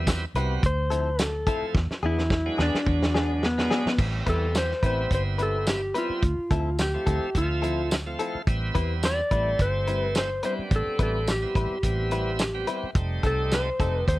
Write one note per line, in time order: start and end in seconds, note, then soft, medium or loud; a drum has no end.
0.00 0.24 E2 medium
0.00 0.25 G3 medium
0.00 0.25 B3 medium
0.00 0.25 C4 medium
0.00 0.25 E4 medium
0.07 kick medium
0.07 snare loud
0.07 closed hi-hat medium
0.07 tambourine loud
0.35 0.57 C2 medium
0.35 0.63 G3 medium
0.35 0.54 G3 medium
0.35 0.63 B3 medium
0.35 0.64 C4 medium
0.35 0.54 C4 medium
0.35 0.54 E4 medium
0.35 0.63 F#4 loud
0.35 0.53 B4 medium
0.35 closed hi-hat medium
0.63 1.43 D2 loud
0.63 1.22 C5 medium
0.63 kick medium
0.63 closed hi-hat medium
0.90 1.10 F3 soft
0.90 1.09 C4 medium
0.90 1.09 E4 medium
0.90 1.09 A4 medium
0.90 closed hi-hat medium
1.19 1.75 A4 loud
1.19 snare loud
1.19 closed hi-hat medium
1.19 tambourine loud
1.47 1.75 F3 medium
1.47 1.66 F3 medium
1.47 1.75 A3 medium
1.47 1.75 C4 medium
1.47 1.65 C4 medium
1.47 1.75 E4 medium
1.47 1.65 E4 medium
1.47 1.65 A4 medium
1.47 kick medium
1.47 closed hi-hat medium
1.62 muted fingered electric bass stroke soft
1.75 1.87 E2 loud
1.75 kick medium
1.75 snare medium
1.91 muted fingered electric bass stroke soft
1.91 snare medium
2.03 2.48 E2 medium
2.03 2.22 B3 medium
2.03 2.21 D4 medium
2.03 2.59 E4 medium
2.03 2.21 G#4 medium
2.19 snare medium
2.30 kick medium
2.30 snare medium
2.46 2.82 F#3 medium
2.46 2.82 G#3 medium
2.46 2.82 B3 medium
2.46 2.82 D4 loud
2.58 2.71 E2 medium
2.58 2.77 B3 medium
2.58 2.77 D4 medium
2.58 3.42 D4 medium
2.58 2.76 G#4 medium
2.58 snare medium
2.74 muted fingered electric bass stroke soft
2.74 snare medium
2.86 3.67 E2 medium
2.86 3.48 F#3 medium
2.86 3.48 G#3 medium
2.86 3.48 B3 medium
2.86 3.48 D4 medium
2.86 kick medium
3.03 snare medium
3.14 3.33 B3 soft
3.14 3.33 D4 medium
3.14 3.32 G#4 medium
3.14 snare medium
3.43 3.98 B3 loud
3.43 snare loud
3.58 3.93 F#3 medium
3.58 3.94 G#3 medium
3.58 3.94 B3 medium
3.58 3.94 D4 medium
3.58 snare medium
3.71 3.90 B3 medium
3.71 3.89 D4 medium
3.71 3.89 G#4 medium
3.71 snare loud
3.86 muted fingered electric bass stroke soft
3.86 snare loud
3.99 4.21 A1 medium
3.99 4.73 G3 medium
3.99 4.73 B3 medium
3.99 4.73 C4 medium
3.99 4.73 E4 medium
3.99 kick loud
3.99 crash medium
4.26 4.72 E2 medium
4.26 4.46 G3 medium
4.26 4.45 C4 soft
4.26 4.45 E4 medium
4.26 4.57 A4 medium
4.26 4.44 B4 medium
4.26 kick medium
4.26 closed hi-hat medium
4.55 4.83 C5 loud
4.55 snare loud
4.55 closed hi-hat medium
4.55 tambourine loud
4.71 snare soft
4.83 5.05 A1 medium
4.83 5.82 G3 medium
4.83 5.02 G3 soft
4.83 5.81 B3 medium
4.83 5.82 C4 medium
4.83 5.01 C4 medium
4.83 5.01 E4 medium
4.83 5.82 E4 medium
4.83 5.01 B4 medium
4.83 5.13 C5 medium
4.83 kick medium
4.83 closed hi-hat medium
5.11 5.91 G1 medium
5.11 5.22 C5 medium
5.11 kick medium
5.11 closed hi-hat medium
5.38 5.58 G3 medium
5.38 5.57 C4 medium
5.38 5.57 E4 medium
5.38 5.56 B4 medium
5.38 closed hi-hat medium
5.43 5.69 A4 medium
5.67 5.94 G4 medium
5.67 snare loud
5.67 closed hi-hat medium
5.67 tambourine loud
5.94 6.23 G3 medium
5.94 6.14 G3 medium
5.94 6.23 B3 medium
5.94 6.23 C4 medium
5.94 6.13 C4 medium
5.94 6.23 E4 medium
5.94 6.13 E4 medium
5.94 6.76 F4 medium
5.94 6.13 B4 medium
5.94 closed hi-hat medium
6.10 muted fingered electric bass stroke soft
6.22 6.35 D2 medium
6.22 kick medium
6.22 closed hi-hat medium
6.39 muted fingered electric bass stroke soft
6.51 6.96 D2 medium
6.51 6.70 F3 soft
6.51 6.69 C4 medium
6.51 6.69 E4 medium
6.51 6.69 A4 medium
6.51 kick medium
6.51 closed hi-hat medium
6.79 7.38 G4 medium
6.79 snare loud
6.79 closed hi-hat medium
6.79 tambourine loud
6.94 7.30 F3 medium
6.94 7.30 A3 medium
6.94 7.30 C4 medium
6.94 7.30 E4 medium
7.06 7.19 D2 medium
7.06 7.26 F3 medium
7.06 7.25 C4 medium
7.06 7.25 E4 medium
7.06 7.25 A4 medium
7.06 kick medium
7.06 closed hi-hat medium
7.35 8.15 D2 medium
7.35 7.96 F3 medium
7.35 7.96 A3 medium
7.35 7.97 C4 medium
7.35 7.88 F4 medium
7.35 7.97 E5 medium
7.35 kick medium
7.35 closed hi-hat medium
7.62 7.81 F3 medium
7.62 7.81 C4 medium
7.62 7.81 E4 medium
7.62 7.80 A4 medium
7.62 closed hi-hat medium
7.91 snare loud
7.91 closed hi-hat medium
7.91 tambourine loud
8.06 8.42 F3 medium
8.06 8.42 A3 medium
8.06 8.42 C4 medium
8.06 8.42 F4 medium
8.19 8.38 F3 medium
8.19 8.38 C4 medium
8.19 8.38 E4 medium
8.19 8.37 A4 medium
8.19 closed hi-hat medium
8.35 muted fingered electric bass stroke soft
8.47 8.70 A1 medium
8.47 9.21 G3 medium
8.47 9.21 B3 medium
8.47 9.21 C4 medium
8.47 9.21 E4 medium
8.47 kick loud
8.47 closed hi-hat medium
8.75 9.20 E2 medium
8.75 8.94 G3 medium
8.75 8.94 C4 medium
8.75 8.93 E4 medium
8.75 8.93 B4 medium
8.75 kick medium
8.75 closed hi-hat medium
9.03 9.62 D5 loud
9.03 snare loud
9.03 closed hi-hat medium
9.03 tambourine loud
9.31 9.54 A1 medium
9.31 10.30 G3 medium
9.31 9.50 G3 medium
9.31 10.30 A3 medium
9.31 10.30 C4 medium
9.31 9.50 C4 medium
9.31 9.50 E4 medium
9.31 10.30 E4 medium
9.31 9.49 B4 medium
9.31 kick medium
9.31 closed hi-hat medium
9.59 10.40 G1 medium
9.59 10.03 C5 loud
9.59 kick medium
9.59 closed hi-hat medium
9.87 10.06 G3 soft
9.87 10.06 C4 medium
9.87 10.06 E4 medium
9.87 10.05 B4 medium
9.87 closed hi-hat medium
10.03 10.17 B4 loud
10.15 10.44 C5 loud
10.15 snare medium
10.15 closed hi-hat medium
10.15 tambourine loud
10.43 11.28 G3 medium
10.43 10.62 G3 medium
10.43 11.29 B3 medium
10.43 11.29 C4 medium
10.43 10.62 C4 medium
10.43 11.29 D4 medium
10.43 10.62 E4 medium
10.43 10.61 B4 medium
10.43 10.53 C5 medium
10.43 closed hi-hat medium
10.59 muted fingered electric bass stroke soft
10.71 10.84 A1 medium
10.71 kick medium
10.71 closed hi-hat medium
10.76 11.02 A4 medium
10.87 muted fingered electric bass stroke soft
10.99 11.44 A1 medium
10.99 11.18 G3 medium
10.99 11.18 C4 medium
10.99 11.18 E4 medium
10.99 11.17 B4 medium
10.99 kick medium
10.99 closed hi-hat medium
11.03 11.30 A4 medium
11.27 12.66 G4 medium
11.27 snare loud
11.27 closed hi-hat medium
11.27 tambourine loud
11.42 11.78 G3 medium
11.42 11.78 B3 medium
11.42 11.78 C4 medium
11.42 11.78 E4 medium
11.55 11.68 A1 medium
11.55 11.74 G3 soft
11.55 11.74 C4 medium
11.55 11.74 E4 medium
11.55 11.74 B4 medium
11.55 kick medium
11.55 closed hi-hat medium
11.71 muted fingered electric bass stroke soft
11.83 12.64 A1 medium
11.83 12.45 G3 medium
11.83 12.45 B3 medium
11.83 12.45 C4 medium
11.83 12.45 E4 medium
11.83 kick medium
11.83 closed hi-hat medium
12.11 12.31 G3 medium
12.11 12.30 C4 medium
12.11 12.30 E4 medium
12.11 12.30 B4 medium
12.11 closed hi-hat medium
12.39 snare loud
12.39 closed hi-hat medium
12.39 tambourine loud
12.54 12.90 G3 medium
12.54 12.91 B3 medium
12.54 12.91 C4 medium
12.54 12.91 G4 medium
12.67 12.87 G3 medium
12.67 12.86 C4 medium
12.67 12.86 E4 medium
12.67 12.86 B4 medium
12.67 closed hi-hat medium
12.84 muted fingered electric bass stroke soft
12.95 13.18 F1 medium
12.95 13.70 G3 medium
12.95 13.70 A3 medium
12.95 13.70 C4 medium
12.95 13.70 D#4 medium
12.95 kick loud
12.95 closed hi-hat medium
13.23 13.69 C2 medium
13.23 13.43 C4 medium
13.23 13.42 D#4 medium
13.23 13.42 A4 medium
13.23 13.54 A4 medium
13.23 kick medium
13.23 closed hi-hat medium
13.52 13.95 C5 loud
13.52 snare loud
13.52 closed hi-hat medium
13.52 tambourine loud
13.79 14.03 F1 medium
13.79 14.19 G3 medium
13.79 14.19 A3 medium
13.79 14.19 C4 medium
13.79 13.99 C4 medium
13.79 14.19 D#4 medium
13.79 13.99 D#4 medium
13.79 13.98 A4 medium
13.79 kick medium
13.79 closed hi-hat medium
13.95 14.07 B4 loud
14.08 14.19 D#2 loud
14.08 14.16 C5 loud
14.08 kick medium
14.08 closed hi-hat medium